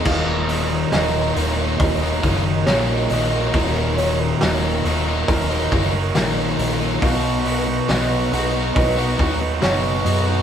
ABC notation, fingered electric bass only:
X:1
M:4/4
L:1/8
Q:1/4=69
K:Ebm
V:1 name="Fingered electric bass" clef=bass
E,,,2 E,,, E,,, E,,, G,,, B,,, B,,, | E,,,2 E,,, E,,, E,,, G,,, B,,, B,,, | =B,,,2 B,,, B,,, B,,, ^D,, ^F,,, ^F,, |]